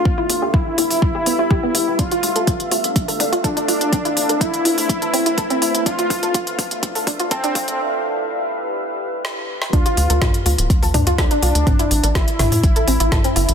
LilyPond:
<<
  \new Staff \with { instrumentName = "Ambient pad" } { \time 4/4 \key d \dorian \tempo 4 = 124 <g' b' e''>1 | <d' a' e'' f''>1 | <a e' b' c''>1 | <d' a' e'' f''>1 |
<e' g' b'>1 | r1 | r1 | }
  \new Staff \with { instrumentName = "Synth pluck" } { \time 4/4 \key d \dorian b16 e'16 r16 g'16 e'16 r16 e'16 r8 g'16 b16 e'16 g'16 b16 e'16 r16 | d'16 f'16 r16 a'16 f'16 r16 f'16 r8 a'16 d'16 f'16 a'16 d'16 f'16 r16 | c'16 e'16 r16 a'16 e'16 r16 e'16 r8 a'16 c'16 e'16 a'16 c'16 e'16 r16 | d'16 f'16 r16 a'16 f'16 r16 f'16 r8 a'16 d'16 f'16 a'16 d'16 f'16 r16 |
r1 | d'16 f'16 r16 a'16 f'16 r16 f'16 r8 a'16 d'16 f'16 a'16 d'16 f'16 r16 | c'16 e'16 r16 a'16 e'16 r16 e'16 r8 a'16 c'16 e'16 a'16 c'16 e'16 r16 | }
  \new Staff \with { instrumentName = "Analog synth lead" } { \time 4/4 \key d \dorian f'4 e'2. | f'4. r4. d'4~ | d'4 e'2. | f'4. r4. c'4 |
r1 | f'4. r4. d'4~ | d'4 e'2. | }
  \new Staff \with { instrumentName = "Analog synth bass" } { \clef bass \time 4/4 \key d \dorian e,16 r16 e,16 e,16 e,16 r16 e,16 e,,16 e,16 e,16 e,16 e,16 r8 e,16 e,,16 | d,16 r16 d,16 d,16 d,16 r16 d,16 d,,16 d,16 d,16 d,16 d,16 d,16 r16 c,16 d,16 | a,,16 r16 a,,16 a,,16 a,,16 r16 a,,16 a,16 a,,16 a,,16 a,,16 a,,16 r8 g,,16 a,,16 | d,16 r16 d,16 d,16 d,16 r16 d,16 d,,16 d,16 d,16 d,16 d,16 d,16 r16 c,16 d,16 |
r1 | d,16 r16 d,16 d,16 r8 d,16 d,,16 d,16 d,16 d,16 d,16 r8 c,16 d,16 | a,,16 r16 a,,16 a,,16 r8 a,,16 a,16 a,,16 a,,16 a,,16 a,,16 r8 g,,16 a,,16 | }
  \new DrumStaff \with { instrumentName = "Drums" } \drummode { \time 4/4 bd8 hho8 bd8 hho16 hho16 bd8 hho8 bd8 hho8 | <hh bd>16 hh16 hho16 hh16 <hh bd toml>16 hh16 hho16 hh16 <hh bd>16 hho16 <hho toml>16 hh16 <hh bd>16 hh16 hho16 hh16 | <hh bd toml>16 hh16 hho16 hh16 <hh bd>16 hh16 <hho toml>16 hho16 <hh bd>16 hh16 hho16 hh16 <hh bd toml>16 hh16 hho16 hh16 | <hh bd>16 hh16 <hho bd toml>16 hh16 <hh bd>16 hh16 <hho bd>16 hh16 <hh bd toml>16 hho16 <hho bd>16 hh16 <hh bd>16 hh16 <hho bd toml>16 hh16 |
r4 r4 r4 sn8. sn16 | <hh bd>16 hh16 hho16 hh16 <hh bd sn toml>16 hh16 hho16 hh16 <hh bd>16 hho16 <hho toml>16 hh16 <hh bd sn>16 hh16 hho16 hh16 | <hh bd toml>16 hh16 hho16 hh16 <hh bd sn>16 hh16 <hho sn toml>16 hho16 <hh bd>16 hh16 hho16 hh16 <hh bd sn toml>16 hh16 hho16 hh16 | }
>>